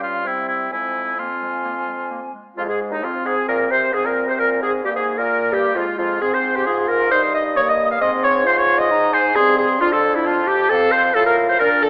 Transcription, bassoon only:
0.00 0.26 G2 medium
0.25 0.73 C3 medium
0.72 2.34 F2 medium
2.57 2.70 F2 medium
2.68 2.93 G#2 medium
2.92 3.02 D#2 medium
3.03 3.13 F2 medium
3.25 3.36 G#2 medium
3.48 3.70 A#2 medium
3.71 3.95 C3 medium
3.93 4.07 G#2 medium
4.05 4.28 A#2 medium
4.27 4.41 C3 medium
4.39 4.63 A#2 medium
4.62 4.86 G#2 medium
4.85 4.97 G2 medium
4.96 5.18 G#2 medium
5.19 5.52 A#2 medium
5.52 5.75 G2 medium
5.75 5.86 F2 medium
5.98 6.20 F2 medium
6.21 7.13 G#2 medium
7.11 8.02 G2 medium
8.01 9.37 G#2 medium
9.36 9.80 G2 medium
9.81 10.69 F2 medium
10.70 11.14 F2 medium
11.15 11.59 A2 medium
11.60 11.89 A#2 medium

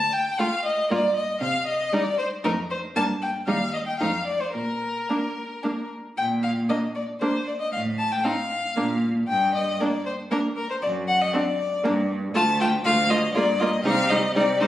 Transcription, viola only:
0.39 0.47 A3 soft
0.91 0.99 A#3 soft
1.93 2.01 G3 soft
2.45 2.53 A3 soft
2.96 3.04 A#3 soft
3.48 3.56 G3 soft
4.00 4.08 A3 soft
5.09 5.17 A#3 soft
5.64 5.72 A#3 soft
6.70 6.78 A#3 soft
7.21 7.29 A#3 soft
8.24 8.32 C4 soft
8.76 8.84 A#3 soft
9.80 9.88 A#3 soft
10.31 10.39 A#3 soft
11.33 11.41 C4 medium
11.84 11.92 A#3 medium
12.35 12.43 A3 medium
12.60 12.68 A3 medium
12.85 12.93 A3 medium
13.10 13.18 A3 medium
13.36 13.44 A#3 medium
13.61 13.69 A#3 medium
13.85 13.93 G3 medium
14.11 14.19 G3 medium
14.36 14.44 G3 medium
14.61 14.67 G3 medium

